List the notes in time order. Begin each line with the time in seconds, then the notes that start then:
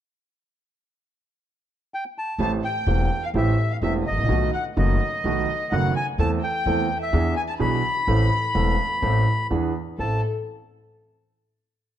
1.94 G5
2.18 A5
2.38 A1 A2 E3 A3 C4 G4 A5
2.64 G5
2.87 E1 E2 E3 A3 C4 G4
3.23 F5
3.34 A1 A2 E3 A3 C4 G4 E5
3.71 F5
3.82 E1 E2 E3 A3 C4 G4 E5
4.07 D#5
4.11 G#1
4.17 A1
4.23 A#1
4.28 B1 B2 D#3 A3 B3 F#4
4.54 F#5
4.77 F#1 F#2 D#3 A3 B3 F#4 D#5
5.24 B1 B2 D#3 A3 B3 F#4
5.72 F#1 F#2 D#3 A3 B3 F#4 F#5
5.95 G#5
6.18 E2 E3 A3 C4 A4 A5
6.42 G5
6.66 E2 E3 A3 C4 A4
7.01 E5
7.13 E2 E3 B3 D4 G#4
7.36 G#5
7.48 A5
7.59 B1 B2 E3 B3 D4 G#4 B5
8.07 A1 A2 E3 A3 C4 A4
8.55 E1 E2 E3 A3 C4 A4
9.02 A1 A2 E3 A3 C4 A4
9.50 E2 E3 B3 D4 G#4
9.98 A1 C4 E4 A4 A5